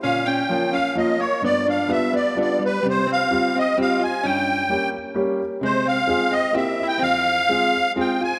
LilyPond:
<<
  \new Staff \with { instrumentName = "Accordion" } { \time 3/4 \key f \minor \tempo 4 = 129 f''8 g''4 f''8 ees''8 des''8 | d''8 f''8 e''8 d''8 d''8 b'8 | c''8 f''4 ees''8 f''8 aes''8 | g''4. r4. |
c''8 f''4 ees''8 \tuplet 3/2 { e''4 g''8 } | f''2 g''8 aes''8 | }
  \new Staff \with { instrumentName = "Hollow-body jazz guitar" } { \time 3/4 \key f \minor des'8 des'4 des'8 bes8 bes8 | b8 d'8 b8 b8 b8 g8 | g8 c'4 c'8 c'8 f'8 | des'4. r4. |
aes8 c'4 c'8 \tuplet 3/2 { c'4 e'8 } | c'2 c'8 f'8 | }
  \new Staff \with { instrumentName = "Upright piano" } { \time 3/4 \key f \minor bes,4 <f bes des' f'>8 r8 <f bes des' f'>8 r8 | g,4 <g b d' f'>8 r8 <g b d' f'>8 r8 | c4 <g c' f' g'>8 r8 <g c' f' g'>8 r8 | g,4 <g bes des' g'>8 r8 <g bes des' g'>8 r8 |
c4 <aes c' f' aes'>8 r8 <bes c' e' g'>8 r8 | f,4 <aes c' f' aes'>8 r8 <aes c' f' aes'>8 r8 | }
>>